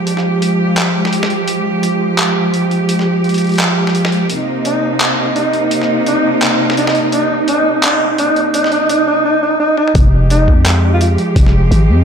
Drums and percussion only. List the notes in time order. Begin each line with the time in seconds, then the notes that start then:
0.07 closed hi-hat
0.17 snare
0.42 closed hi-hat
0.77 clap, closed hi-hat
1.05 snare
1.13 closed hi-hat
1.23 snare
1.30 closed hi-hat
1.48 closed hi-hat
1.83 closed hi-hat
2.18 clap, closed hi-hat
2.54 closed hi-hat
2.71 closed hi-hat
2.89 closed hi-hat
2.99 snare
3.24 closed hi-hat
3.29 closed hi-hat
3.34 closed hi-hat
3.38 closed hi-hat
3.42 closed hi-hat
3.44 closed hi-hat
3.47 closed hi-hat
3.49 closed hi-hat
3.52 closed hi-hat
3.54 closed hi-hat
3.56 closed hi-hat
3.58 clap, closed hi-hat
3.59 closed hi-hat
3.87 snare
3.95 closed hi-hat
4.05 snare
4.12 closed hi-hat
4.30 closed hi-hat
4.65 closed hi-hat
5.00 clap, closed hi-hat
5.36 closed hi-hat
5.53 closed hi-hat
5.71 closed hi-hat
5.82 snare
6.06 closed hi-hat
6.42 clap, closed hi-hat
6.70 snare
6.77 closed hi-hat
6.87 snare
6.95 closed hi-hat
7.12 closed hi-hat
7.48 closed hi-hat
7.83 clap, closed hi-hat
8.18 closed hi-hat
8.36 closed hi-hat
8.54 closed hi-hat
8.64 snare
8.72 closed hi-hat
8.89 closed hi-hat
9.77 high tom
9.88 mid tom
9.95 kick, closed hi-hat
10.30 closed hi-hat
10.48 kick
10.66 clap, closed hi-hat
11.01 closed hi-hat
11.18 closed hi-hat
11.36 kick, closed hi-hat
11.46 snare
11.72 closed hi-hat